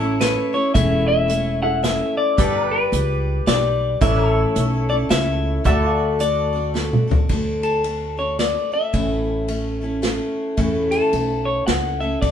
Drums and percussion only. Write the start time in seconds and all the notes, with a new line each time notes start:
0.21 snare, closed hi-hat
0.75 kick, closed hi-hat
1.30 closed hi-hat
1.84 snare, closed hi-hat
2.38 kick, closed hi-hat
2.93 closed hi-hat
3.47 snare, closed hi-hat
4.01 kick, closed hi-hat
4.56 closed hi-hat
5.10 snare, closed hi-hat
5.65 kick, closed hi-hat
6.20 closed hi-hat
6.75 snare
6.93 mid tom
7.11 floor tom
7.29 kick, ride
7.63 ride
7.84 ride
8.39 snare, ride
8.94 kick, ride
9.48 ride
10.03 snare, ride
10.57 kick, ride
10.92 ride
11.13 ride
11.68 snare, ride
12.22 kick, ride